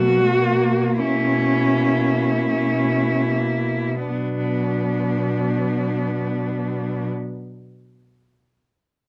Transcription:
Already playing: B2 F#3 A#3 F#4
0.30 A#3
0.99 B2 C#4 E4
1.74 A#3
2.50 B2 C#4
3.29 A#3
4.09 B2 F#3 B3 D4

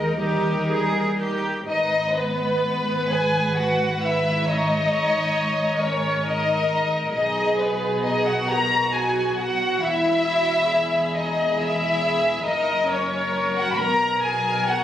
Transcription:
Already playing: D#2 G#3 D#4 A#4 D#5
0.18 G3 D#4 G4 A#4
0.69 G#4
1.18 G4
1.65 G#1 G#2 D#4 B4
1.69 D#5
2.12 B3 B4
3.07 G#4 G#5
3.56 F#4 F#5
4.02 E4 E5
4.45 D#4 C#5 D#5
5.82 C#4 A#4 C#5
6.25 D#4 D#5
7.13 B1 B2 D#4 G#4 D#5
7.56 B3 B4
8.03 D#4 D#5
8.25 F#4 F#5
8.47 F#4 A#4 A#5
8.93 G#4 G#5
9.37 F#4 F#5
9.81 E1 E2 E4 E5
10.25 F#4
10.69 G#4
11.15 D#4 D#5
11.56 E4
11.61 E5
12.42 F#1 F#2 D#4 A#4 D#5
12.87 C#4 C#5
13.54 F#4 F#5
13.72 A#4 B5
13.78 B1 B2 A#5
14.21 G#4 G#5
14.64 F#4 F#5

